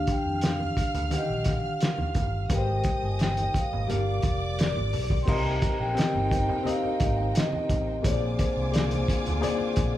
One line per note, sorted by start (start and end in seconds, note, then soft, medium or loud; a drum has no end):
0.00 0.71 D#3 medium
0.00 0.72 D4 medium
0.00 0.76 G4 medium
0.00 0.10 F5 loud
0.00 0.73 F5 medium
0.00 2.47 F5 medium
0.00 2.46 F6 medium
0.07 0.45 G5 medium
0.07 kick loud
0.07 closed hi-hat medium
0.25 0.72 F2 medium
0.41 snare loud
0.41 closed hi-hat medium
0.46 1.15 F5 medium
0.60 muted conga soft
0.60 high conga medium
0.77 muted fingered electric bass stroke soft
0.77 kick medium
0.77 closed hi-hat medium
0.94 1.10 D2 medium
0.94 closed hi-hat soft
0.94 low conga medium
1.10 2.11 D3 medium
1.10 2.10 D#3 medium
1.10 2.12 G4 medium
1.10 1.19 F#5 medium
1.10 muted fingered electric bass stroke soft
1.10 closed hi-hat medium
1.10 muted conga soft
1.10 high conga medium
1.16 1.49 D#5 medium
1.20 2.15 G5 medium
1.29 1.60 A#1 medium
1.29 muted conga soft
1.44 kick loud
1.44 snare soft
1.44 closed hi-hat medium
1.81 snare loud
1.81 closed hi-hat medium
1.98 2.17 D#2 medium
1.98 muted conga soft
1.98 high conga medium
2.15 2.46 G1 medium
2.15 kick medium
2.15 closed hi-hat medium
2.15 low conga medium
2.49 2.81 G#1 medium
2.49 3.49 G#3 medium
2.49 3.49 G4 medium
2.49 3.50 A#4 medium
2.49 2.58 B4 medium
2.49 3.86 D#5 medium
2.49 3.86 D#6 medium
2.49 kick loud
2.49 closed hi-hat medium
2.49 low conga medium
2.55 3.53 C5 medium
2.55 3.01 G5 medium
2.67 muted conga soft
2.84 kick loud
2.84 closed hi-hat medium
3.03 3.49 G1 medium
3.03 3.21 G#5 medium
3.19 3.57 G5 loud
3.19 snare loud
3.19 closed hi-hat medium
3.19 muted conga soft
3.37 closed hi-hat medium
3.37 muted conga soft
3.37 high conga medium
3.54 4.56 F5 medium
3.54 muted fingered electric bass stroke soft
3.54 kick medium
3.54 closed hi-hat medium
3.72 3.87 G#1 medium
3.72 low conga medium
3.87 4.21 G1 loud
3.87 4.87 G3 medium
3.87 4.88 G4 medium
3.87 4.88 A#4 medium
3.87 5.24 D5 medium
3.87 4.89 F5 medium
3.87 5.24 D6 medium
3.87 closed hi-hat medium
3.87 high conga medium
4.08 muted conga soft
4.22 4.70 F1 medium
4.22 kick loud
4.22 closed hi-hat medium
4.59 5.17 D5 medium
4.59 snare loud
4.59 closed hi-hat medium
4.59 muted conga soft
4.76 4.92 G#1 medium
4.76 high conga medium
4.93 5.24 B1 medium
4.93 open hi-hat medium
4.93 low conga medium
5.10 kick medium
5.22 5.76 C4 medium
5.22 7.99 D#4 medium
5.22 5.76 G4 medium
5.22 7.99 G5 medium
5.22 5.28 C6 medium
5.27 5.59 C2 loud
5.27 9.98 C3 medium
5.27 8.02 A#3 medium
5.27 8.02 D#4 medium
5.27 5.77 A#4 medium
5.27 8.00 C5 medium
5.27 5.77 D#5 medium
5.27 5.81 A#5 loud
5.27 kick loud
5.27 crash loud
5.27 muted conga soft
5.27 low conga medium
5.45 muted conga soft
5.62 kick loud
5.62 closed hi-hat medium
5.80 5.95 A#1 medium
5.80 6.32 G5 medium
5.95 6.45 C4 medium
5.95 6.46 G4 medium
5.95 6.46 A#4 medium
5.95 6.47 D#5 medium
5.95 muted fingered electric bass stroke soft
5.95 closed hi-hat medium
5.99 snare loud
6.14 6.46 G1 loud
6.14 muted conga soft
6.14 high conga medium
6.31 6.48 G5 medium
6.31 kick medium
6.31 closed hi-hat medium
6.49 low conga medium
6.63 7.63 C4 medium
6.63 7.64 G4 medium
6.63 7.64 A#4 medium
6.63 7.65 D#5 medium
6.63 closed hi-hat medium
6.63 high conga medium
6.68 7.32 F5 loud
6.83 muted fingered electric bass stroke soft
6.83 muted conga soft
7.00 7.32 G#1 medium
7.00 kick loud
7.00 closed hi-hat medium
7.18 high conga soft
7.35 8.01 D#5 medium
7.35 snare loud
7.35 closed hi-hat medium
7.53 muted conga soft
7.53 high conga medium
7.69 8.01 A1 medium
7.69 kick medium
7.69 closed hi-hat medium
7.69 low conga medium
8.03 8.35 A#1 medium
8.03 9.98 D3 medium
8.03 9.98 G#3 medium
8.03 8.53 A#3 medium
8.03 9.98 F4 medium
8.03 8.53 G#4 medium
8.03 8.54 C5 medium
8.03 8.12 C#5 medium
8.03 9.98 G#5 medium
8.03 9.98 D6 medium
8.03 kick loud
8.03 closed hi-hat medium
8.03 low conga medium
8.07 8.22 D5 medium
8.12 8.57 D5 medium
8.39 9.05 C5 medium
8.39 kick medium
8.39 closed hi-hat medium
8.57 9.03 C2 medium
8.71 9.21 A#3 medium
8.71 9.22 G#4 medium
8.71 9.23 C5 medium
8.71 9.23 D5 medium
8.71 closed hi-hat medium
8.71 muted conga soft
8.76 snare loud
8.91 closed hi-hat medium
8.91 high conga medium
9.08 muted fingered electric bass stroke soft
9.08 kick medium
9.08 closed hi-hat medium
9.26 9.42 D2 medium
9.26 closed hi-hat soft
9.26 low conga medium
9.41 9.98 A#3 medium
9.41 9.98 G#4 medium
9.41 9.98 C5 medium
9.41 9.98 D5 medium
9.41 closed hi-hat medium
9.41 muted conga soft
9.41 high conga medium
9.61 muted fingered electric bass stroke soft
9.61 muted conga soft
9.76 9.98 A#1 medium
9.76 kick loud
9.76 closed hi-hat medium